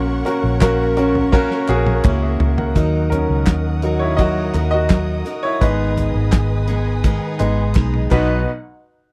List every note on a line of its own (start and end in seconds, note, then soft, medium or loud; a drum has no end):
0.00 0.22 A#1 medium
0.00 0.58 A#2 medium
0.00 0.15 A#3 medium
0.00 0.60 A#3 medium
0.00 0.16 C#4 medium
0.00 0.26 C#4 medium
0.00 0.16 F#4 medium
0.00 0.26 F#4 medium
0.00 0.16 A#4 loud
0.00 0.24 A#4 medium
0.00 2.73 A#4 medium
0.00 2.72 C#5 medium
0.00 2.72 F#5 medium
0.00 2.72 C#6 medium
0.25 0.56 A#3 medium
0.25 0.56 C#4 medium
0.25 0.60 C#4 soft
0.25 0.56 F#4 medium
0.25 0.61 F#4 soft
0.25 0.61 A#4 medium
0.25 0.56 A#4 medium
0.25 closed hi-hat medium
0.44 1.47 A#1 loud
0.60 0.97 A#3 medium
0.60 0.92 A#3 medium
0.60 0.97 C#4 medium
0.60 0.92 C#4 medium
0.60 0.92 F#4 medium
0.60 0.97 F#4 medium
0.60 0.92 A#4 loud
0.60 0.95 A#4 medium
0.60 kick loud
0.60 snare loud
0.60 clap medium
0.60 closed hi-hat medium
0.97 1.28 A#3 medium
0.97 1.28 C#4 medium
0.97 1.32 C#4 soft
0.97 1.28 F#4 medium
0.97 1.32 F#4 soft
0.97 1.33 A#4 medium
0.97 1.28 A#4 medium
0.97 closed hi-hat medium
1.15 floor tom medium
1.32 1.63 A#3 loud
1.32 2.03 A#3 medium
1.32 1.63 C#4 loud
1.32 2.03 C#4 medium
1.32 1.63 F#4 loud
1.32 2.05 F#4 loud
1.32 1.64 A#4 loud
1.32 2.06 A#4 medium
1.32 kick loud
1.32 snare medium
1.51 snare soft
1.68 2.02 A#1 medium
1.68 1.99 A#3 medium
1.68 1.99 C#4 medium
1.68 1.99 F#4 medium
1.68 1.99 G#4 loud
1.68 clap medium
1.86 high tom medium
2.04 2.38 C#2 medium
2.04 2.76 A#3 medium
2.04 2.76 C#4 medium
2.04 2.22 E4 medium
2.04 2.77 F#4 medium
2.04 2.77 A#4 medium
2.04 2.22 C#5 medium
2.04 kick loud
2.04 clap medium
2.04 mid tom medium
2.22 2.57 G#4 medium
2.22 2.56 E5 medium
2.40 2.73 C#2 medium
2.40 floor tom loud
2.58 2.92 A#4 medium
2.58 2.92 F#5 medium
2.58 floor tom medium
2.75 3.26 D#2 medium
2.75 4.18 D#3 medium
2.75 3.23 F#3 soft
2.75 3.83 F#3 medium
2.75 3.23 A#3 soft
2.75 3.24 D#4 medium
2.75 3.85 D#4 medium
2.75 3.83 F#4 medium
2.75 5.58 A#4 medium
2.75 3.82 A#4 medium
2.75 8.07 D#5 medium
2.75 5.58 F#5 medium
2.75 8.07 D#6 medium
2.75 kick medium
2.75 closed hi-hat medium
3.10 3.97 C#4 medium
3.10 4.03 A#4 medium
3.10 closed hi-hat medium
3.10 floor tom medium
3.29 3.46 C#2 medium
3.46 4.50 D#2 medium
3.46 kick loud
3.46 snare loud
3.46 clap medium
3.46 closed hi-hat medium
3.82 4.15 F#3 soft
3.82 4.15 A#3 soft
3.82 4.15 D#4 soft
3.82 4.18 D#4 soft
3.82 4.19 F#4 soft
3.82 4.19 A#4 soft
3.82 closed hi-hat medium
3.99 4.18 E4 medium
3.99 4.19 C#5 medium
4.17 4.54 D#3 medium
4.17 4.55 F#3 medium
4.17 4.55 D#4 medium
4.17 4.69 F#4 medium
4.17 4.54 F#4 medium
4.17 4.53 A#4 medium
4.17 4.69 D#5 loud
4.17 kick loud
4.17 closed hi-hat medium
4.54 5.22 D#2 medium
4.54 4.89 D#4 soft
4.54 4.90 F#4 medium
4.54 4.90 A#4 medium
4.54 clap medium
4.54 closed hi-hat medium
4.71 5.40 F#4 medium
4.71 5.45 D#5 loud
4.90 5.26 F#3 medium
4.90 5.26 D#4 medium
4.90 5.25 F#4 medium
4.90 5.24 A#4 medium
4.90 kick loud
4.90 snare loud
4.90 clap medium
4.90 closed hi-hat medium
5.25 5.61 D#4 soft
5.25 5.62 F#4 soft
5.25 5.61 A#4 medium
5.25 snare soft
5.25 closed hi-hat medium
5.43 5.61 E4 medium
5.43 5.62 C#5 medium
5.61 6.11 G#1 medium
5.61 6.68 G#2 medium
5.61 7.04 D#3 medium
5.61 6.09 G#3 medium
5.61 6.69 G#3 medium
5.61 6.69 B3 medium
5.61 6.09 B3 soft
5.61 6.69 D#4 medium
5.61 7.38 D#4 medium
5.61 6.67 G#4 medium
5.61 7.72 B4 medium
5.61 8.09 B4 medium
5.61 8.09 G#5 medium
5.61 kick loud
5.61 closed hi-hat medium
5.97 closed hi-hat medium
5.97 floor tom medium
6.15 7.18 G#1 medium
6.32 kick loud
6.32 snare loud
6.32 clap medium
6.32 closed hi-hat medium
6.68 7.04 G#3 soft
6.68 7.04 B3 medium
6.68 7.04 D#4 medium
6.68 7.04 G#4 medium
6.68 closed hi-hat medium
7.04 7.40 G#2 medium
7.04 7.40 D#3 medium
7.04 7.40 G#3 medium
7.04 7.40 B3 medium
7.04 7.39 D#4 medium
7.04 7.38 G#4 loud
7.04 kick loud
7.04 closed hi-hat medium
7.39 7.73 G#1 medium
7.39 7.72 G#3 medium
7.39 7.74 G#3 soft
7.39 7.72 B3 soft
7.39 7.75 B3 medium
7.39 7.72 D#4 medium
7.39 7.76 D#4 medium
7.39 7.76 G#4 medium
7.39 clap medium
7.39 closed hi-hat medium
7.75 8.09 B1 medium
7.75 8.11 G#3 medium
7.75 8.11 B3 medium
7.75 8.11 D#4 medium
7.75 8.13 G#4 medium
7.75 kick loud
7.75 snare medium
7.75 clap medium
7.94 high tom medium
8.11 8.45 B1 medium
8.11 8.40 B2 medium
8.11 8.40 D#3 medium
8.11 8.40 F#3 medium
8.11 8.45 B3 medium
8.11 8.41 B3 medium
8.11 8.44 D#4 medium
8.11 8.45 D#4 medium
8.11 8.41 D#4 medium
8.11 8.45 F#4 medium
8.11 8.45 B4 medium
8.11 8.41 B4 medium
8.11 8.44 F#5 medium
8.11 kick loud
8.11 clap medium
8.11 crash medium